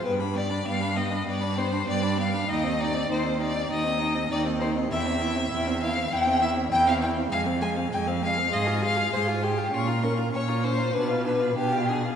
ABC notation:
X:1
M:4/4
L:1/16
Q:1/4=99
K:Cm
V:1 name="Violin"
g =b g b g b g b g b g b g b g b | g e g e g e g e g e g e g e g e | [K:Fm] g =e g e g e g e g e g e g e g e | a f a f a f a f c' a c' a c' a c' a |
d' b d' b d' b d' b ^g f g f g f g f |]
V:2 name="Violin"
=B2 d2 f2 e2 d2 c2 d2 f2 | e2 d2 c2 d2 e4 d2 c2 | [K:Fm] =e6 f2 g2 e2 g f g2 | f2 a2 g2 f2 e2 f2 c2 G2 |
F2 B2 d2 c2 =B2 B2 G2 ^G2 |]
V:3 name="Viola"
=B, D B, D B, D B, D B, D B, D B, D B, D | E C E C E C E C E C E C E C E C | [K:Fm] =E C E C E C E C E C E C E C E C | A, C A, C A, C A, C A F A F A F A F |
D F D F D F D F =D F D F D F D F |]
V:4 name="Cello" clef=bass
G,,4 G,,4 G,,4 G,,4 | E,,4 E,,4 E,,4 E,,4 | [K:Fm] =E,,4 E,,4 E,,4 E,,4 | F,,4 F,,4 A,,4 A,,4 |
B,,4 B,,4 =B,,4 B,,4 |]